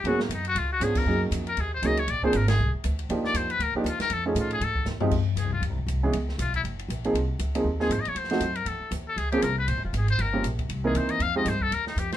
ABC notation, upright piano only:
X:1
M:4/4
L:1/8
Q:"Swing" 1/4=237
K:Fphr
V:1 name="Upright piano"
[G,B,_CDA] z4 z [F,CD=DA]2 | [G,B,DEA]3 z3 [G,B,DEA] z | z [F,B,C=DA] z6 | [F,B,=DE=G]3 z2 [F,B,DEG] z2 |
z [F,=A,^CE^G]3 z3 [F,^G,=CE=G] | [K:Fm] z6 z [=E,A,=B,DA] | z6 z [F,B,CEA] | z3 [F,B,CEA] z [F,B,CEA] z2 |
z [F,=A,CE_G] z6 | z [F,B,CDA] z6 | z [F,G,B,DG] z3 [=E,B,C^DB]3 | z [F,A,CEG] z6 |]